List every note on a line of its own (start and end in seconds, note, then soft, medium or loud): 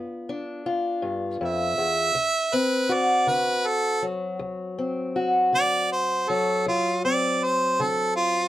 0.00 0.58 G2 medium
0.00 2.12 B3 medium
0.00 0.29 D4 medium
0.00 0.65 F4 medium
0.29 2.53 D4 medium
0.66 2.11 F4 medium
1.02 1.40 G2 medium
1.41 1.77 F2 medium
1.45 2.56 E5 loud
1.78 2.14 E2 medium
2.15 2.83 D2 medium
2.53 4.77 C4 medium
2.53 2.95 B4 medium
2.89 5.15 F#4 medium
2.93 3.30 D5 medium
3.27 3.95 D3 medium
3.27 3.69 B4 medium
3.67 4.03 A4 loud
4.02 6.28 F#3 medium
4.39 5.07 D2 medium
4.78 6.61 C4 medium
5.16 6.61 F#4 medium
5.53 6.20 D3 medium
5.53 5.91 D5 loud
5.93 6.31 C5 medium
6.29 8.48 F#3 medium
6.29 6.65 A4 medium
6.66 7.34 D2 medium
6.66 7.03 F4 medium
7.05 8.48 C4 medium
7.05 7.45 D5 medium
7.44 7.83 C5 medium
7.80 8.47 D3 medium
7.80 8.15 A4 loud
8.16 8.48 F4 medium